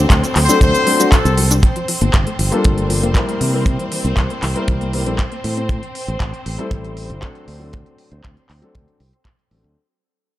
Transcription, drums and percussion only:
0.10 kick medium
0.10 clap loud
0.10 closed hi-hat loud
0.10 cabasa medium
0.24 closed hi-hat soft
0.24 cabasa soft
0.35 clap medium
0.35 open hi-hat loud
0.49 closed hi-hat soft
0.49 cabasa medium
0.61 kick loud
0.61 closed hi-hat loud
0.61 cabasa medium
0.74 closed hi-hat soft
0.74 cabasa soft
0.87 open hi-hat loud
1.00 closed hi-hat soft
1.00 cabasa medium
1.12 kick loud
1.12 clap loud
1.12 closed hi-hat loud
1.12 cabasa medium
1.25 closed hi-hat soft
1.25 cabasa soft
1.38 open hi-hat loud
1.51 closed hi-hat soft
1.51 cabasa medium
1.63 kick loud
1.63 closed hi-hat medium
1.76 closed hi-hat soft
1.88 open hi-hat loud
2.01 closed hi-hat soft
2.14 kick loud
2.14 clap loud
2.14 closed hi-hat medium
2.27 closed hi-hat soft
2.39 open hi-hat loud
2.52 closed hi-hat soft
2.64 kick loud
2.64 closed hi-hat medium
2.78 closed hi-hat soft
2.90 open hi-hat loud
3.03 closed hi-hat soft
3.15 kick loud
3.15 clap loud
3.15 closed hi-hat medium
3.29 closed hi-hat soft
3.41 open hi-hat loud
3.66 kick loud
3.66 closed hi-hat medium
3.79 closed hi-hat soft
3.92 open hi-hat loud
4.05 closed hi-hat soft
4.17 kick loud
4.17 clap loud
4.17 closed hi-hat medium
4.30 closed hi-hat soft
4.42 clap medium
4.42 open hi-hat loud
4.56 closed hi-hat soft
4.68 kick loud
4.68 closed hi-hat medium
4.81 closed hi-hat soft
4.93 open hi-hat loud
5.06 closed hi-hat soft
5.19 kick loud
5.19 clap loud
5.19 closed hi-hat medium
5.32 closed hi-hat soft
5.44 open hi-hat loud
5.57 closed hi-hat soft
5.69 kick loud
5.69 closed hi-hat medium
5.83 closed hi-hat soft
5.95 open hi-hat loud
6.08 closed hi-hat soft
6.20 kick loud
6.20 clap loud
6.20 closed hi-hat medium
6.34 closed hi-hat soft
6.46 open hi-hat loud
6.59 closed hi-hat soft
6.71 kick loud
6.71 closed hi-hat medium
6.85 closed hi-hat soft
6.97 open hi-hat loud
7.10 closed hi-hat soft
7.22 kick loud
7.22 clap loud
7.22 closed hi-hat medium
7.35 closed hi-hat soft
7.48 open hi-hat loud
7.73 kick loud
7.73 closed hi-hat medium
7.86 closed hi-hat soft
7.98 open hi-hat loud
8.12 closed hi-hat soft
8.24 kick loud
8.24 clap loud
8.24 closed hi-hat medium
8.37 closed hi-hat soft
8.49 clap medium
8.49 open hi-hat loud
8.63 closed hi-hat soft
8.75 kick loud
8.75 closed hi-hat medium
8.88 closed hi-hat soft
9.00 open hi-hat medium
9.13 closed hi-hat soft
9.25 kick loud
9.25 clap loud
9.25 closed hi-hat medium
9.39 closed hi-hat soft
9.51 open hi-hat loud
9.64 closed hi-hat soft

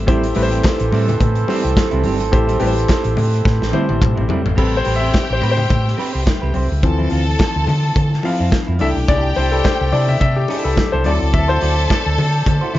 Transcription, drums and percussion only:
0.08 kick loud
0.08 closed hi-hat medium
0.23 closed hi-hat medium
0.35 open hi-hat medium
0.35 muted conga soft
0.52 closed hi-hat soft
0.64 kick loud
0.64 snare loud
0.64 clap medium
0.64 closed hi-hat medium
0.64 high conga medium
0.80 closed hi-hat medium
0.92 open hi-hat medium
0.92 muted conga medium
1.08 closed hi-hat medium
1.08 low conga medium
1.20 kick loud
1.20 closed hi-hat medium
1.20 low conga medium
1.35 closed hi-hat soft
1.48 open hi-hat medium
1.48 muted conga medium
1.64 closed hi-hat soft
1.76 kick loud
1.76 snare loud
1.76 clap medium
1.76 closed hi-hat medium
1.76 high conga medium
1.91 closed hi-hat soft
2.04 open hi-hat medium
2.04 high conga medium
2.20 closed hi-hat medium
2.33 kick loud
2.33 closed hi-hat medium
2.49 closed hi-hat medium
2.60 open hi-hat medium
2.60 muted conga soft
2.78 closed hi-hat soft
2.88 kick loud
2.88 snare loud
2.88 clap medium
2.88 closed hi-hat medium
2.88 high conga medium
3.04 closed hi-hat medium
3.17 open hi-hat medium
3.17 muted conga medium
3.17 low conga medium
3.34 closed hi-hat medium
3.45 kick loud
3.45 snare medium
3.62 snare medium
3.73 high tom medium
3.73 muted conga medium
3.89 high tom medium
4.01 kick loud
4.01 clap medium
4.01 mid tom medium
4.01 high conga medium
4.17 mid tom medium
4.29 floor tom loud
4.29 high conga medium
4.46 floor tom loud
4.58 kick loud
4.58 crash medium
4.85 open hi-hat medium
4.85 muted conga soft
5.14 kick loud
5.14 snare loud
5.14 closed hi-hat medium
5.14 high conga medium
5.42 open hi-hat medium
5.42 muted conga medium
5.57 low conga medium
5.70 kick loud
5.70 closed hi-hat medium
5.70 low conga medium
5.88 snare soft
5.98 open hi-hat medium
5.98 muted conga medium
6.26 kick loud
6.26 snare loud
6.26 closed hi-hat medium
6.26 high conga medium
6.54 open hi-hat medium
6.54 high conga medium
6.83 kick loud
6.83 closed hi-hat medium
7.10 open hi-hat medium
7.39 kick loud
7.39 snare loud
7.39 closed hi-hat medium
7.39 high conga medium
7.67 open hi-hat medium
7.67 muted conga medium
7.67 low conga medium
7.96 kick loud
7.96 closed hi-hat medium
8.13 snare soft
8.23 open hi-hat medium
8.23 muted conga medium
8.51 kick loud
8.51 snare loud
8.51 closed hi-hat medium
8.51 high conga medium
8.79 open hi-hat medium
8.79 high conga medium
9.08 kick loud
9.08 closed hi-hat medium
9.35 open hi-hat medium
9.35 muted conga soft
9.64 kick loud
9.64 snare loud
9.64 closed hi-hat medium
9.64 high conga medium
9.92 open hi-hat medium
9.92 muted conga medium
10.08 low conga medium
10.20 kick loud
10.20 closed hi-hat medium
10.20 low conga medium
10.48 open hi-hat medium
10.48 muted conga medium
10.76 kick loud
10.76 snare loud
10.76 closed hi-hat medium
10.76 high conga medium
11.04 open hi-hat medium
11.04 high conga medium
11.34 kick loud
11.34 closed hi-hat medium
11.61 open hi-hat medium
11.61 muted conga soft
11.90 kick loud
11.90 snare loud
11.90 closed hi-hat medium
11.90 high conga medium
12.18 open hi-hat medium
12.18 muted conga medium
12.18 low conga medium
12.46 kick loud
12.46 closed hi-hat medium
12.46 low conga medium
12.75 open hi-hat medium
12.75 muted conga medium

